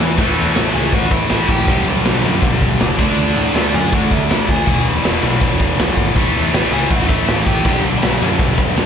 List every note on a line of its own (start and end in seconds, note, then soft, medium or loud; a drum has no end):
0.00 0.17 E2 loud
0.00 0.18 E3 loud
0.00 snare medium
0.18 0.33 A1 loud
0.18 0.54 A2 loud
0.18 0.55 E3 loud
0.18 0.55 A3 loud
0.18 kick loud
0.18 crash loud
0.18 crash medium
0.38 0.52 E2 loud
0.55 0.71 A1 loud
0.55 0.73 A2 medium
0.55 0.74 E3 loud
0.55 0.74 A3 medium
0.55 snare loud
0.55 crash medium
0.74 0.89 C#2 medium
0.74 0.92 A2 medium
0.74 0.92 E3 medium
0.74 0.93 A3 loud
0.74 0.93 G#4 medium
0.74 0.93 G#5 loud
0.92 1.07 A1 medium
0.92 1.29 A2 loud
0.92 1.29 E3 loud
0.92 1.30 A3 loud
0.92 1.11 F#4 medium
0.92 1.11 F#5 loud
0.92 kick loud
0.92 crash medium
1.11 1.26 A1 medium
1.11 1.47 E4 medium
1.11 1.48 E5 loud
1.11 kick medium
1.29 1.45 A1 loud
1.29 1.47 A2 medium
1.29 1.48 E3 loud
1.29 1.49 A3 loud
1.29 snare loud
1.29 crash medium
1.49 1.63 A#1 medium
1.49 1.67 A2 medium
1.49 1.67 E3 medium
1.49 1.67 A3 loud
1.49 1.84 G4 medium
1.49 1.84 G5 medium
1.49 kick loud
1.67 1.82 B1 medium
1.67 2.04 G2 loud
1.67 2.04 D3 loud
1.67 2.05 G3 loud
1.67 kick loud
1.67 crash medium
1.88 2.02 B1 loud
2.05 2.20 B1 loud
2.05 2.22 G2 medium
2.05 2.23 D3 loud
2.05 2.23 G3 loud
2.05 snare loud
2.05 crash medium
2.23 2.38 F#2 loud
2.23 2.40 G2 medium
2.23 2.41 D3 loud
2.23 2.42 G3 loud
2.42 2.57 B1 loud
2.42 2.78 G2 loud
2.42 2.79 D3 loud
2.42 2.79 G3 loud
2.42 kick loud
2.42 crash medium
2.61 2.76 B1 medium
2.61 kick medium
2.79 2.95 F#1 loud
2.79 2.97 G2 medium
2.79 2.97 D3 loud
2.79 2.98 G3 loud
2.79 snare loud
2.79 crash medium
2.98 3.14 D2 medium
2.98 3.17 D3 loud
2.98 3.17 A3 medium
2.98 3.17 D4 loud
2.98 kick loud
2.98 crash loud
3.17 3.32 D2 loud
3.17 3.55 D3 loud
3.17 3.55 A3 loud
3.17 3.56 D4 loud
3.17 crash medium
3.36 3.51 A2 loud
3.55 3.69 D2 medium
3.55 3.73 D3 medium
3.55 3.73 A3 loud
3.55 3.74 D4 medium
3.55 snare loud
3.55 crash medium
3.74 3.88 F#2 medium
3.74 3.91 D3 loud
3.74 3.92 A3 loud
3.74 3.93 D4 loud
3.74 3.92 G#4 medium
3.74 3.93 G#5 loud
3.92 4.07 D2 loud
3.92 4.29 D3 loud
3.92 4.30 A3 loud
3.92 4.30 D4 loud
3.92 4.11 F#4 medium
3.92 4.12 F#5 loud
3.92 kick loud
3.92 crash medium
4.11 4.25 D2 loud
4.11 4.46 E4 medium
4.11 4.50 E5 loud
4.11 kick medium
4.30 4.44 D2 loud
4.30 4.48 D3 loud
4.30 4.48 A3 loud
4.30 4.49 D4 loud
4.30 snare loud
4.30 crash medium
4.49 4.63 D2 medium
4.49 4.66 D3 medium
4.49 4.66 A3 medium
4.49 4.67 D4 medium
4.49 4.84 G#4 medium
4.49 4.84 G#5 medium
4.49 kick medium
4.67 4.81 E1 loud
4.67 5.03 E2 loud
4.67 5.04 B2 loud
4.67 5.05 E3 loud
4.67 kick loud
4.67 crash medium
4.86 5.00 E1 medium
5.04 5.19 E1 medium
5.04 5.21 E2 medium
5.04 5.22 B2 medium
5.04 5.23 E3 medium
5.04 snare loud
5.04 crash medium
5.22 5.37 B1 loud
5.22 5.40 E2 medium
5.22 5.40 B2 medium
5.22 5.41 E3 loud
5.41 5.56 E1 medium
5.41 5.76 E2 loud
5.41 5.77 B2 loud
5.41 5.78 E3 loud
5.41 kick loud
5.41 crash medium
5.60 5.74 E1 medium
5.60 kick medium
5.77 5.94 B1 loud
5.77 5.94 E2 medium
5.77 5.96 B2 loud
5.77 5.96 E3 loud
5.77 snare loud
5.77 crash medium
5.96 6.16 G#1 medium
5.96 6.14 E2 medium
5.96 6.14 B2 medium
5.96 6.14 E3 loud
5.96 kick medium
6.14 6.30 A1 loud
6.14 6.52 A2 loud
6.14 6.52 E3 loud
6.14 6.53 A3 loud
6.14 kick loud
6.14 crash medium
6.35 6.49 E2 medium
6.53 6.68 A1 medium
6.53 6.70 A2 medium
6.53 6.71 E3 medium
6.53 6.71 A3 loud
6.53 snare loud
6.53 crash medium
6.71 6.86 C#2 medium
6.71 6.89 A2 medium
6.71 6.90 E3 medium
6.71 6.90 A3 loud
6.71 6.90 G#4 medium
6.71 6.90 G#5 loud
6.75 7.66 A2 medium
6.88 7.05 A1 loud
6.88 7.25 A2 loud
6.88 7.26 E3 loud
6.88 7.26 A3 loud
6.88 7.08 F#4 medium
6.88 7.07 F#5 loud
6.88 kick loud
6.88 crash medium
7.07 7.24 A1 loud
7.07 7.44 E4 medium
7.07 7.44 E5 loud
7.07 kick medium
7.26 7.42 A1 loud
7.26 7.45 A2 medium
7.26 7.45 E3 medium
7.26 7.46 A3 loud
7.26 snare loud
7.26 crash medium
7.44 7.61 A1 medium
7.44 7.64 A2 medium
7.44 7.64 E3 medium
7.44 7.64 A3 medium
7.44 7.82 G4 medium
7.44 7.80 G5 medium
7.44 kick loud
7.65 7.80 B1 loud
7.65 8.01 G2 loud
7.65 8.02 D3 loud
7.65 8.02 G3 loud
7.65 kick loud
7.65 crash medium
7.84 7.98 B1 loud
8.02 8.17 B1 loud
8.02 8.19 G2 medium
8.02 8.20 D3 medium
8.02 8.20 G3 medium
8.02 snare loud
8.02 crash medium
8.20 8.36 F#2 loud
8.20 8.38 G2 medium
8.20 8.38 D3 medium
8.20 8.39 G3 medium
8.39 8.54 B1 loud
8.39 8.75 G2 loud
8.39 8.75 D3 loud
8.39 8.76 G3 loud
8.39 kick loud
8.39 crash medium
8.58 8.73 B1 loud
8.58 kick medium
8.76 8.86 E2 loud
8.76 8.86 G2 loud
8.76 8.86 D3 loud
8.76 8.86 G3 loud
8.76 snare loud
8.76 crash medium